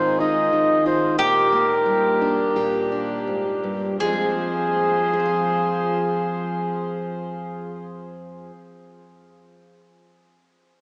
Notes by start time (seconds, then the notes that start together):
Already playing: G#2 D#3 F3 C4 D#4 F4 G#4 C5
0.20 D#4 D#5
0.53 D#3
0.86 F4 C5
1.18 A#2 A#3 D4 G4 A#4
1.52 A#3
1.86 G3
2.21 D4
2.56 A#2 G4
2.92 D4
3.27 G#2
3.63 G2
4.00 F2 F3 F4 G#4 C5
4.05 G#3 C4
4.09 G#4
5.14 G#4
5.20 C5
5.26 F5